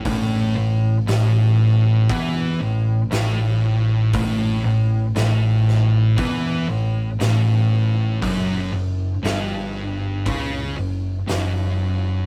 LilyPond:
<<
  \new Staff \with { instrumentName = "Distorted electric guitar" } { \clef bass \time 4/4 \key a \lydian \tempo 4 = 59 a,8 a,8 a,4 e8 a,8 a,4 | a,8 a,8 a,4 e8 a,8 a,4 | fis,8 fis,8 g,4 cis8 fis,8 fis,4 | }
  \new Staff \with { instrumentName = "Distorted electric guitar" } { \clef bass \time 4/4 \key a \lydian a,8 a,8 a,4 e8 a,8 a,4 | a,8 a,8 a,4 e8 a,8 a,4 | fis,8 fis,8 g,4 cis8 fis,8 fis,4 | }
  \new Staff \with { instrumentName = "Picked electric bass" } { \clef bass \time 4/4 \key a \lydian a,,8 a,,8 a,,4 e,8 a,,8 a,,4 | a,,8 a,,8 a,,4 e,8 a,,8 a,,4 | fis,,8 fis,,8 g,,4 cis,8 fis,,8 fis,,4 | }
  \new DrumStaff \with { instrumentName = "Drums" } \drummode { \time 4/4 <hho bd>4 <hho sn>4 <hho bd>4 <hho sn>4 | <hho bd>4 <hho sn>8 sn8 <hho bd>4 <hho sn>4 | <hho bd>4 <hho sn>4 <hho bd>4 <hho sn>4 | }
>>